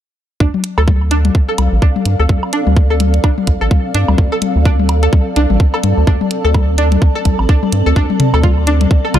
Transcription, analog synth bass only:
0.40 D2
0.78 D2
1.59 C2
1.72 A1
2.06 G2
2.20 D2
2.29 D2
2.67 D2
3.47 C2
3.61 A1
3.95 G2
4.09 D2
4.18 D2
4.56 D2
5.36 C2
5.50 A1
5.84 G2
5.97 D2
6.07 D2
6.45 D2
7.25 C2
7.39 A1
7.73 G2
7.86 D2
7.96 D2
8.34 D2
9.14 C2

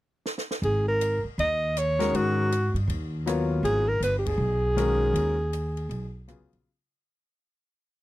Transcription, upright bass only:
0.62 G#1
1.24 muted upright bass stroke
1.38 D#2
2.13 G#2
2.74 G2
2.87 D#2
3.63 G#1
4.00 G1
4.38 B1
5.14 D#2
5.89 B1
6.40 C#2
6.53 A#1

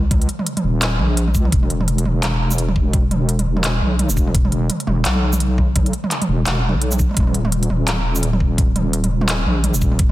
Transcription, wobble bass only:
Already playing: C#2
0.64 D#1
0.99 A#1
1.35 C#2
1.52 E1
2.05 E1
3.46 E1
3.82 B1
4.10 E1
4.87 E1
5.05 B1
6.29 E1
6.46 E1
6.74 B1
7.17 D#1
7.70 D#1
9.11 D#1
9.46 A#1
9.74 D#1

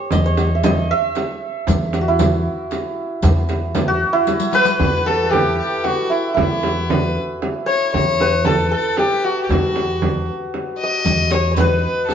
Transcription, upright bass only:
0.13 E2
1.67 E2
3.23 E2
4.80 E2
6.38 E2
7.95 E2
9.49 E2
11.06 E2

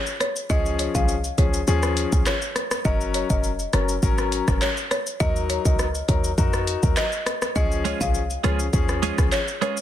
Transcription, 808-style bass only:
0.50 C#2
0.95 C2
1.38 C#2
1.68 D#2
2.13 C#2
2.85 F#1
3.30 F1
3.73 F#1
4.03 G#1
4.48 F#1
5.20 D#2
5.65 C#2
6.09 D#2
6.38 F2
6.83 D#2
7.56 C#2
8.01 C2
8.44 C#2
8.73 D#2
9.18 C#2

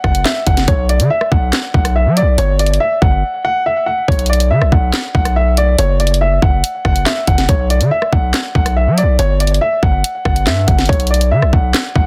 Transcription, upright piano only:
0.04 F#5
0.25 E5
0.47 F#5
0.68 C#5
0.89 D5
1.10 E5
1.32 F#5
1.75 F#5
1.96 E5
2.17 D5
2.38 C#5
2.59 D5
2.80 E5
3.02 F#5
3.45 F#5
3.66 E5
3.86 F#5
4.08 C#5
4.30 D5
4.50 E5
4.72 F#5
5.15 F#5
5.36 E5
5.58 D5
5.79 C#5
6.00 D5
6.21 E5
6.42 F#5
6.85 F#5
7.06 E5
7.28 F#5
7.49 C#5
7.70 D5
7.91 E5
8.12 F#5
8.55 F#5
8.76 E5
8.98 D5
9.19 C#5
9.40 D5
9.61 E5
9.83 F#5
10.25 F#5
10.47 E5
10.67 F#5
10.89 C#5
11.10 D5
11.31 E5
11.53 F#5
11.96 F#5

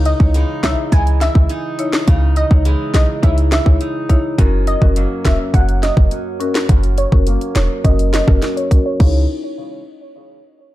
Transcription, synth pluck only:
0.06 D#5
0.64 E5
0.93 G#5
1.22 E5
2.37 D#5
2.95 D#5
3.23 E5
3.53 E5
4.68 D#5
5.25 E5
5.54 F#5
5.83 D#5
6.98 C#5
7.56 C#5
7.85 D#5
8.14 D#5
8.57 C#5
8.86 C#5
9.00 C#5

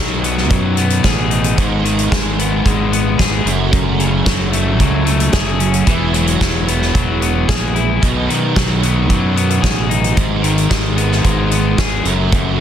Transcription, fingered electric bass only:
Already playing: B1
0.50 F#2
1.04 A1
1.58 G#1
2.12 G#1
2.66 G#1
3.20 G#1
3.45 F#1
4.26 F#1
4.80 C#2
5.33 F#1
5.87 E1
6.95 E1
7.49 A#1
8.03 B1
8.57 B1
9.10 F#2
9.63 A1
10.71 G#1
11.25 G#1
12.05 F#1

